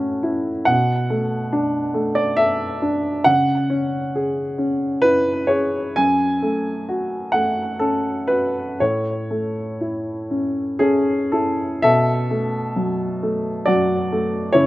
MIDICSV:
0, 0, Header, 1, 2, 480
1, 0, Start_track
1, 0, Tempo, 854701
1, 382, Time_signature, 3, 2, 24, 8
1, 1338, Tempo, 881057
1, 2778, Tempo, 927357
1, 4218, Tempo, 1000000
1, 5658, Tempo, 1036269
1, 6138, Tempo, 899550
1, 7644, End_track
2, 0, Start_track
2, 0, Title_t, "Grand piano"
2, 0, Program_c, 0, 0
2, 0, Control_c, 0, 64, 127
2, 0, Note_on_c, 0, 45, 56
2, 0, Note_on_c, 0, 57, 48
2, 0, Note_on_c, 0, 61, 49
2, 0, Note_on_c, 0, 64, 45
2, 0, Note_on_c, 0, 66, 68
2, 0, Note_on_c, 0, 69, 83
2, 129, Note_off_c, 0, 64, 0
2, 129, Note_on_c, 0, 64, 53
2, 280, Note_off_c, 0, 61, 0
2, 358, Note_off_c, 0, 45, 0
2, 367, Note_on_c, 0, 78, 92
2, 377, Note_off_c, 0, 64, 0
2, 377, Note_on_c, 0, 47, 59
2, 390, Control_c, 0, 64, 0
2, 394, Note_off_c, 0, 69, 0
2, 396, Note_off_c, 0, 57, 0
2, 397, Note_off_c, 0, 66, 0
2, 493, Control_c, 0, 64, 127
2, 618, Note_on_c, 0, 57, 49
2, 857, Note_on_c, 0, 62, 56
2, 998, Note_off_c, 0, 57, 0
2, 1090, Note_on_c, 0, 57, 53
2, 1208, Note_off_c, 0, 78, 0
2, 1208, Note_on_c, 0, 74, 80
2, 1240, Note_off_c, 0, 62, 0
2, 1328, Note_on_c, 0, 76, 96
2, 1333, Note_off_c, 0, 74, 0
2, 1339, Note_on_c, 0, 69, 54
2, 1478, Note_off_c, 0, 57, 0
2, 1577, Note_on_c, 0, 62, 55
2, 1722, Note_off_c, 0, 69, 0
2, 1792, Note_off_c, 0, 47, 0
2, 1808, Note_on_c, 0, 78, 94
2, 1813, Note_off_c, 0, 76, 0
2, 1815, Note_on_c, 0, 49, 59
2, 1817, Note_off_c, 0, 62, 0
2, 1827, Control_c, 0, 64, 0
2, 1916, Control_c, 0, 64, 127
2, 2055, Note_on_c, 0, 61, 51
2, 2303, Note_on_c, 0, 68, 50
2, 2438, Note_off_c, 0, 61, 0
2, 2537, Note_on_c, 0, 61, 47
2, 2683, Note_off_c, 0, 68, 0
2, 2772, Note_off_c, 0, 78, 0
2, 2773, Note_on_c, 0, 71, 101
2, 2784, Note_on_c, 0, 64, 50
2, 2921, Note_off_c, 0, 61, 0
2, 3009, Note_on_c, 0, 73, 72
2, 3018, Note_off_c, 0, 71, 0
2, 3018, Note_on_c, 0, 68, 51
2, 3173, Note_off_c, 0, 64, 0
2, 3245, Note_off_c, 0, 49, 0
2, 3261, Note_off_c, 0, 73, 0
2, 3261, Note_on_c, 0, 80, 91
2, 3266, Note_off_c, 0, 68, 0
2, 3269, Note_on_c, 0, 42, 62
2, 3277, Control_c, 0, 64, 0
2, 3353, Control_c, 0, 64, 127
2, 3502, Note_on_c, 0, 57, 49
2, 3741, Note_on_c, 0, 66, 51
2, 3874, Note_off_c, 0, 57, 0
2, 3965, Note_on_c, 0, 78, 80
2, 3968, Note_off_c, 0, 80, 0
2, 3975, Note_on_c, 0, 57, 45
2, 4122, Note_off_c, 0, 66, 0
2, 4211, Note_on_c, 0, 69, 69
2, 4215, Note_off_c, 0, 78, 0
2, 4216, Note_on_c, 0, 61, 43
2, 4359, Note_off_c, 0, 57, 0
2, 4443, Note_on_c, 0, 71, 80
2, 4448, Note_off_c, 0, 69, 0
2, 4454, Note_on_c, 0, 66, 45
2, 4593, Note_off_c, 0, 61, 0
2, 4673, Note_off_c, 0, 42, 0
2, 4687, Note_off_c, 0, 71, 0
2, 4692, Note_off_c, 0, 66, 0
2, 4696, Note_on_c, 0, 73, 72
2, 4700, Control_c, 0, 64, 0
2, 4700, Note_on_c, 0, 45, 51
2, 4800, Control_c, 0, 64, 127
2, 4937, Note_on_c, 0, 57, 41
2, 5178, Note_on_c, 0, 64, 42
2, 5324, Note_off_c, 0, 57, 0
2, 5418, Note_on_c, 0, 61, 40
2, 5562, Note_off_c, 0, 64, 0
2, 5646, Note_off_c, 0, 61, 0
2, 5650, Note_on_c, 0, 68, 80
2, 5653, Note_on_c, 0, 61, 66
2, 5659, Note_on_c, 0, 69, 44
2, 5880, Note_off_c, 0, 61, 0
2, 5888, Note_off_c, 0, 69, 0
2, 5895, Note_on_c, 0, 69, 66
2, 5896, Note_off_c, 0, 68, 0
2, 5898, Note_on_c, 0, 61, 49
2, 5899, Note_on_c, 0, 64, 44
2, 5902, Note_off_c, 0, 73, 0
2, 6120, Note_off_c, 0, 61, 0
2, 6124, Note_off_c, 0, 45, 0
2, 6127, Note_off_c, 0, 69, 0
2, 6129, Note_on_c, 0, 76, 98
2, 6134, Note_on_c, 0, 69, 79
2, 6135, Note_on_c, 0, 47, 63
2, 6137, Note_off_c, 0, 64, 0
2, 6149, Control_c, 0, 64, 0
2, 6241, Control_c, 0, 64, 127
2, 6384, Note_on_c, 0, 57, 48
2, 6627, Note_on_c, 0, 54, 49
2, 6773, Note_off_c, 0, 57, 0
2, 6876, Note_on_c, 0, 57, 46
2, 7014, Note_off_c, 0, 54, 0
2, 7087, Note_off_c, 0, 69, 0
2, 7105, Note_on_c, 0, 74, 86
2, 7106, Note_off_c, 0, 76, 0
2, 7110, Note_on_c, 0, 66, 64
2, 7116, Note_on_c, 0, 54, 50
2, 7255, Note_off_c, 0, 57, 0
2, 7354, Note_on_c, 0, 57, 52
2, 7489, Note_off_c, 0, 54, 0
2, 7557, Note_off_c, 0, 47, 0
2, 7558, Note_off_c, 0, 66, 0
2, 7569, Note_on_c, 0, 73, 95
2, 7577, Note_off_c, 0, 74, 0
2, 7580, Note_on_c, 0, 49, 61
2, 7580, Note_on_c, 0, 64, 67
2, 7584, Note_off_c, 0, 57, 0
2, 7589, Control_c, 0, 64, 0
2, 7644, Note_off_c, 0, 49, 0
2, 7644, Note_off_c, 0, 64, 0
2, 7644, Note_off_c, 0, 73, 0
2, 7644, End_track
0, 0, End_of_file